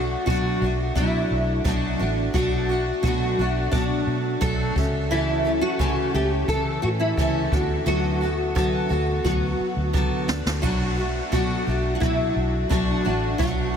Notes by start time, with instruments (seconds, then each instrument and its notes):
Already playing: fingered electric bass B1, steel-string acoustic guitar A3 D4 F#4, nylon-string guitar F#4
0.27 fingered electric bass B2, steel-string acoustic guitar B2 F#3 A3 D4 F#4, kick
0.61 fingered electric bass B1, steel-string acoustic guitar A3 D4 F#4
0.95 fingered electric bass B2, steel-string acoustic guitar F#3 A3 D4 F#4, nylon-string guitar E4, kick
1.31 fingered electric bass B1
1.64 fingered electric bass B1, steel-string acoustic guitar B2 F#3 A3 D4 F#4, kick
1.99 fingered electric bass A1, steel-string acoustic guitar A3 D4 F#4
2.34 fingered electric bass B1, steel-string acoustic guitar B2 F#3 A3 D4 F#4, kick
2.69 steel-string acoustic guitar A3 D4 F#4
3.03 fingered electric bass B2, steel-string acoustic guitar B2 F#3 A3 D4 F#4, kick
3.38 fingered electric bass B1, steel-string acoustic guitar A3 D4 F#4
3.72 fingered electric bass B2, steel-string acoustic guitar F#3 A3 D4 F#4, kick
4.07 fingered electric bass B2
4.41 fingered electric bass B1, steel-string acoustic guitar B2 F#3 A3 D4 F#4, nylon-string guitar A4, kick
4.76 fingered electric bass C#2, steel-string acoustic guitar A3 C#4 A4, kick
5.11 steel-string acoustic guitar C#3 E3 A3 C#4 A4, nylon-string guitar E4
5.44 steel-string acoustic guitar A3 C#4 A4
5.61 nylon-string guitar F#4
5.79 steel-string acoustic guitar C#3 E3 A3 C#4 A4, fingered electric bass C#3, kick
6.14 fingered electric bass C#2, steel-string acoustic guitar A3 C#4 A4, nylon-string guitar G4
6.48 fingered electric bass C#3, steel-string acoustic guitar E3 A3 C#4 A4, kick
6.82 fingered electric bass A2, nylon-string guitar F#4
7.00 nylon-string guitar E4
7.17 fingered electric bass C#2, steel-string acoustic guitar C#3 E3 A3 C#4 A4, kick
7.52 fingered electric bass D2, steel-string acoustic guitar B3 F#4 A4, nylon-string guitar D4, kick
7.86 fingered electric bass D2, steel-string acoustic guitar D3 F#3 B3 F#4 A4
8.21 steel-string acoustic guitar B3 F#4 A4
8.55 steel-string acoustic guitar D3 F#3 B3 F#4 A4, fingered electric bass D3, kick
8.89 fingered electric bass D2, steel-string acoustic guitar B3 F#4 A4
9.24 fingered electric bass D2, steel-string acoustic guitar F#3 B3 F#4 A4, kick
9.60 muted fingered electric bass stroke
9.76 fingered electric bass D2
9.93 fingered electric bass C#2, steel-string acoustic guitar D3 F#3 B3 F#4 A4, kick
10.28 fingered electric bass D2, steel-string acoustic guitar B3 F#4 A4, nylon-string guitar D4, snare
10.45 fingered electric bass D2, snare
10.63 fingered electric bass B1, steel-string acoustic guitar B2 F#3 A3 D4 F#4, kick, splash
10.97 steel-string acoustic guitar A3 D4 F#4
11.32 steel-string acoustic guitar B2 F#3 A3 D4 F#4, fingered electric bass B2, kick
11.67 fingered electric bass B1, steel-string acoustic guitar A3 D4 F#4
11.95 nylon-string guitar F#4
12.00 fingered electric bass B2, steel-string acoustic guitar F#3 A3 D4 F#4, nylon-string guitar E4, kick
12.36 fingered electric bass B1
12.70 fingered electric bass B1, steel-string acoustic guitar B2 F#3 A3 D4 F#4, kick
13.05 fingered electric bass A1, steel-string acoustic guitar A3 D4 F#4
13.39 fingered electric bass B1, steel-string acoustic guitar B2 F#3 A3 D4 F#4, kick